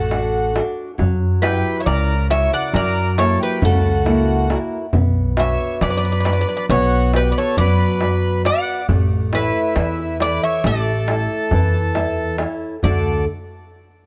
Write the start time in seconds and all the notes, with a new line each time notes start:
Already playing: A1 A3 F#4 A4
0.11 D4 F#4 A4, darbuka tek
0.55 D4 F#4 A4, darbuka tek
0.98 F#2 F#3, darbuka dum
1.42 E4 G4 B4 F#5, darbuka tek
1.80 C#5 E5
1.86 C#2 C#3 A#4 D5, darbuka tek
2.30 E4 F#4 A#4 C#5 E5, darbuka tek
2.53 D5 F#5
2.74 F#2 F#3 A#4 D5, darbuka tek
3.18 A#3 E4 F#4 A4 C#5, darbuka tek
3.41 G4 B4
3.62 C#2 C#3 F#4 A4, darbuka dum
4.06 A#3 E4 F#4, darbuka tek
4.50 E4 F#4 A#4, darbuka tek
4.93 B1 B3, darbuka dum
5.37 D4 F#4 B4 C#5 E5, darbuka tek
5.81 F#2 F#3 B4 D5, darbuka tek
5.90 D5
5.97 D5
6.05 D5
6.12 D5
6.20 D5
6.25 D4 F#4 B4 D5, darbuka tek
6.33 D5
6.41 D5
6.49 D5
6.57 D5
6.69 B1 B3 F#4 C#5, darbuka tek
7.14 F#4 G4 B4 D5, darbuka tek
7.31 B4 D5
7.38 A4 C#5
7.57 F#2 F#3 B4 D5, darbuka dum
8.01 F#4 B4 D5, darbuka tek
8.45 F#4 B4 D5 F#5, darbuka tek
8.89 A1 A3, darbuka dum
9.32 E4 A4 B4 C#5, darbuka tek
9.76 E2 E3, darbuka tek
9.99 darbuka tek
10.20 E4 A4 B4 D5 E5, darbuka tek
10.43 C#5 E5
10.64 A1 A3 A4 D5, darbuka tek
10.86 darbuka tek
11.08 E4 A4 E5, darbuka tek
11.30 darbuka tek
11.51 E2 E3, darbuka dum
11.74 darbuka tek
11.95 E4 A4 E5, darbuka tek
12.17 darbuka tek
12.38 E4 A4 C#5, darbuka tek
12.83 D2 D3 A3 D4 F#4 A4 D5, darbuka dum